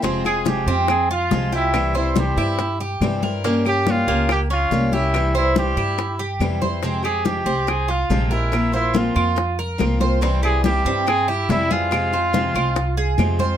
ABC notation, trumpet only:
X:1
M:4/4
L:1/8
Q:1/4=142
K:Fm
V:1 name="Trumpet"
z A G2 A F2 =E- | =E E G3 z3 | z G F2 G F2 =E- | =E E G3 z3 |
z A G2 A F2 =E- | =E E F3 z3 | z A G2 A G =E F- | F6 z2 |]